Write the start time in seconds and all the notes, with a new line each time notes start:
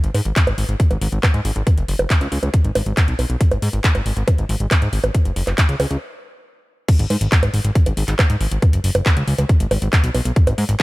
0.04 G#1, closed hi-hat
0.14 G#2, open hi-hat, high bongo
0.25 G#1, closed hi-hat
0.36 kick, clap, closed hi-hat
0.47 G#1, closed hi-hat, high bongo
0.58 G#1, open hi-hat
0.69 G#1, closed hi-hat
0.80 kick, closed hi-hat
0.91 G#1, closed hi-hat, high bongo
1.01 G#1, open hi-hat
1.12 G#1, closed hi-hat
1.23 kick, clap, closed hi-hat, high bongo
1.34 G#2, closed hi-hat
1.45 G#1, open hi-hat
1.56 G#1, closed hi-hat
1.67 kick, closed hi-hat, high bongo
1.78 F#1, closed hi-hat
1.88 F#1, open hi-hat
1.99 F#1, closed hi-hat, high bongo
2.10 kick, clap, closed hi-hat
2.21 C#2, closed hi-hat
2.32 C#2, open hi-hat
2.43 C#2, closed hi-hat, high bongo
2.54 kick, closed hi-hat
2.64 G#1, closed hi-hat
2.75 G#1, open hi-hat, high bongo
2.86 G#1, closed hi-hat
2.97 kick, clap, closed hi-hat
3.08 B1, closed hi-hat
3.19 B1, open hi-hat, high bongo
3.30 B1, closed hi-hat
3.41 kick, closed hi-hat
3.51 G#1, closed hi-hat, high bongo
3.62 G#2, open hi-hat
3.73 G#1, closed hi-hat
3.84 kick, clap, closed hi-hat
3.95 G#1, closed hi-hat, high bongo
4.06 G#1, open hi-hat
4.17 G#1, closed hi-hat
4.28 kick, closed hi-hat, high bongo
4.38 G#1, closed hi-hat
4.49 G#1, open hi-hat
4.60 G#1, closed hi-hat
4.71 kick, clap, closed hi-hat, high bongo
4.82 G#2, closed hi-hat
4.93 G#1, open hi-hat
5.04 G#1, closed hi-hat, high bongo
5.15 kick, closed hi-hat
5.25 F#1, closed hi-hat
5.36 F#1, open hi-hat
5.47 F#1, clap, closed hi-hat, high bongo
5.58 kick, clap, closed hi-hat
5.69 C#2, closed hi-hat
5.80 C#2, open hi-hat, high bongo
5.91 C#2, closed hi-hat
6.88 kick, closed hi-hat, crash
6.99 G#1, closed hi-hat
7.10 G#2, open hi-hat, high bongo
7.21 G#1, closed hi-hat
7.32 kick, clap, closed hi-hat
7.43 G#1, closed hi-hat, high bongo
7.54 G#1, open hi-hat
7.65 G#1, closed hi-hat
7.75 kick, closed hi-hat
7.86 G#1, closed hi-hat, high bongo
7.97 G#1, open hi-hat
8.08 G#1, clap, closed hi-hat
8.19 kick, clap, closed hi-hat, high bongo
8.30 G#2, closed hi-hat
8.41 G#1, open hi-hat
8.51 G#1, closed hi-hat
8.62 kick, closed hi-hat, high bongo
8.73 F#1, closed hi-hat
8.84 F#1, open hi-hat
8.95 F#1, closed hi-hat, high bongo
9.06 kick, clap, closed hi-hat
9.17 C#2, closed hi-hat
9.28 C#2, open hi-hat
9.38 C#2, closed hi-hat, high bongo
9.49 kick, closed hi-hat
9.60 G#1, closed hi-hat
9.71 G#1, open hi-hat, high bongo
9.82 G#1, closed hi-hat
9.93 kick, clap, closed hi-hat
10.04 B1, closed hi-hat
10.14 B1, open hi-hat, high bongo
10.25 B1, closed hi-hat
10.36 kick, closed hi-hat
10.47 G#1, closed hi-hat, high bongo
10.58 G#2, open hi-hat
10.69 G#1, closed hi-hat